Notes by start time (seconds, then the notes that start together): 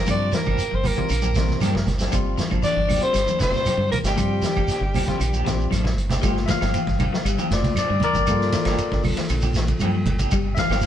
Already playing: A#3 D4
0.06 G2 F3 G3 C4 D4 F4, kick, closed hi-hat, claves, shekere
0.10 D5
0.20 muted clean electric guitar stroke
0.32 E3 A#3 A#4, muted clean electric guitar stroke, snare, closed hi-hat, high conga, shekere
0.45 G1 F3 A#3 D4 G4, kick, claves, shekere
0.58 closed hi-hat, shekere
0.71 G1 F3 C4 C5, muted clean electric guitar stroke
0.83 F3 A#3 G4 A#4, open hi-hat, high conga, low conga, claves, shekere
0.97 E3 G3 C4 F4, muted clean electric guitar stroke, kick, closed hi-hat
1.09 A#1 D3, muted clean electric guitar stroke, closed hi-hat, claves, shekere
1.22 F3 A#3 D4 G4, high conga, shekere
1.34 E3 G3 C4 F4, muted clean electric guitar stroke, kick, snare, closed hi-hat, shekere
1.48 snare, low conga, shekere
1.61 G2 F3 A#3 D4 G4, snare, closed hi-hat, high conga, claves, shekere
1.73 F3, muted clean electric guitar stroke, kick, snare
1.87 G1, muted clean electric guitar stroke, snare, closed hi-hat, high conga, low conga, shekere
1.99 A#3 D4 G4, snare, closed hi-hat, high conga, shekere
2.12 G1 G3 C4 F4, kick, closed hi-hat, claves, shekere
2.25 muted clean electric guitar stroke
2.38 E3, muted clean electric guitar stroke, snare, closed hi-hat, high conga, shekere
2.50 G1 F3 A#3 D4, kick, claves, shekere
2.62 E3 D4 D5, snare, closed hi-hat, shekere
2.76 G1, muted clean electric guitar stroke, high conga
2.88 D3 F3 A#3 D4 G4, open hi-hat, high conga, low conga, claves, shekere
3.01 G3 C4 F4 C5, muted clean electric guitar stroke, closed hi-hat
3.13 G1 G3, muted clean electric guitar stroke, snare, closed hi-hat, claves, shekere
3.26 E3 A#3 D4, muted clean electric guitar stroke, high conga, shekere
3.39 F1 D3 G3 C4 F4 C5, muted clean electric guitar stroke, kick, snare, closed hi-hat, shekere
3.52 C3, snare, low conga, shekere
3.65 F3 A#3 D4 G4, muted fingered electric bass stroke, snare, closed hi-hat, high conga, claves, shekere
3.77 G2 D3, muted clean electric guitar stroke
3.90 E3 A#3 A#4, muted clean electric guitar stroke, muted fingered electric bass stroke, closed hi-hat, high conga, low conga, shekere
4.04 G1 G3 A#3 D4 G4, snare, closed hi-hat, shekere
4.16 G2 F3 G3 C4 F4, kick, closed hi-hat, claves, shekere
4.30 muted clean electric guitar stroke
4.42 E3, snare, closed hi-hat, high conga, shekere
4.56 G1 F3 A#3 D4 G4, kick, claves, shekere
4.68 snare, closed hi-hat, shekere
4.80 G1 D3, muted clean electric guitar stroke
4.94 F3 A#3 D4 G4, open hi-hat, high conga, low conga, claves, shekere
5.07 E3 G3 C4 F4, muted clean electric guitar stroke, kick, snare, closed hi-hat
5.18 A#1 D3, muted clean electric guitar stroke, closed hi-hat, claves, shekere
5.32 F3 A#3 D4 G4, high conga, shekere
5.45 A#1 E3 G3 C4 F4, muted clean electric guitar stroke, kick, snare, closed hi-hat, shekere
5.60 shekere
5.70 A1 F3 A#3 D4, snare, closed hi-hat, high conga, claves, shekere
5.84 F3, muted clean electric guitar stroke, kick, snare, high conga
5.97 G1, muted clean electric guitar stroke, closed hi-hat, shekere
6.09 A#3 D4 G4, snare, closed hi-hat, low conga, shekere
6.21 G1 F3 G3 A3 A#3 F4 G4, muted clean electric guitar stroke, kick, snare, ride bell, claves, shekere
6.36 muted clean electric guitar stroke, snare
6.46 E3 E5, muted clean electric guitar stroke, kick, snare, ride bell, high conga, shekere
6.50 F5
6.61 G1 F3 A#3 G4, muted clean electric guitar stroke, snare, claves, shekere
6.74 E3, ride bell, shekere
6.87 G1, muted clean electric guitar stroke, kick, snare
6.99 D3 F3 A#3 D4 G4, ride bell, high conga, low conga, claves, shekere
7.13 F3, muted clean electric guitar stroke, snare
7.25 G1 G3, muted clean electric guitar stroke, ride bell, claves, shekere
7.37 E3 F3 A#3 D4 G4, high conga, shekere
7.50 F1 A3 A#3 F4 D5, muted clean electric guitar stroke, snare, ride bell, shekere
7.63 C3, kick, snare, ride bell, low conga, shekere
7.75 F3 D4 D5, muted fingered electric bass stroke, muted clean electric guitar stroke, snare, ride bell, high conga, claves, shekere
7.89 G2 D3, muted clean electric guitar stroke
8.00 E3 A#4, muted clean electric guitar stroke, muted fingered electric bass stroke, ride bell, high conga, low conga, shekere
8.04 D5
8.14 G1 A#3 D4 G4, kick, high conga, shekere
8.27 G2 F3 A#3 F4 A4, kick, ride bell, claves, shekere
8.40 muted clean electric guitar stroke, snare
8.52 E3, muted clean electric guitar stroke, snare, ride bell, high conga, shekere
8.65 G1 F3 A#3 D4 G4, snare, ride bell, claves, shekere
8.78 ride bell, shekere
8.92 G1 D3, muted clean electric guitar stroke, kick, snare
9.03 A#3 D4, muted clean electric guitar stroke, open hi-hat, high conga, low conga, claves, shekere
9.17 E3, muted clean electric guitar stroke, snare, ride bell
9.29 A#1 D3, muted clean electric guitar stroke, ride bell, claves, shekere
9.42 F3 A#3 D4 G4, kick, shekere
9.54 E3, muted clean electric guitar stroke, snare, ride bell, shekere
9.67 kick, ride bell, shekere
9.80 G2 F3 A#3 D4 G4, ride bell, high conga, claves, shekere
9.95 F3, muted clean electric guitar stroke
10.05 G1, muted clean electric guitar stroke, ride bell, high conga, low conga, shekere
10.19 A#3 D4 G4, kick, ride bell, shekere
10.31 G1 G3, kick, ride bell, claves, shekere
10.45 muted clean electric guitar stroke
10.55 E3 E5, muted clean electric guitar stroke, kick, snare, ride bell, high conga, shekere
10.59 F5
10.69 G1 F3 A#3 D4 G4, snare, claves, shekere
10.81 ride bell, shekere